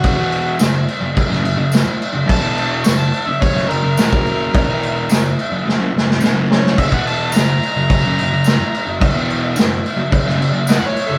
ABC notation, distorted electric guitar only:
X:1
M:4/4
L:1/16
Q:1/4=107
K:F#
V:1 name="Distorted electric guitar" clef=bass
[F,,C,] [=E,,B,,=E,]3 [F,,C,]2 z [F,,C,] [F,,C,] [F,,C,] [F,,C,] [F,,C,]2 z2 [F,,C,] | [F,,C,] [=E,,B,,=E,]3 [F,,C,]2 z [F,,C,] [F,,C,] [F,,C,] [F,,C,] [F,,C,] [E,,B,,] [F,,C,F,]3 | [F,,C,] [=E,,B,,=E,]3 [F,,C,]2 z [F,,C,] [F,,C,] [F,,C,] [F,,C,] [F,,C,] [E,,B,,] [F,,C,F,]3 | [F,,C,] [=E,,B,,=E,]3 [F,,C,]2 z [F,,C,] [F,,C,] [F,,C,] [F,,C,] [F,,C,]2 z2 [F,,C,] |
[F,,C,] [=E,,B,,=E,]3 [F,,C,]2 z [F,,C,] [F,,C,] [F,,C,] [F,,C,] [F,,C,]2 z2 [F,,C,] |]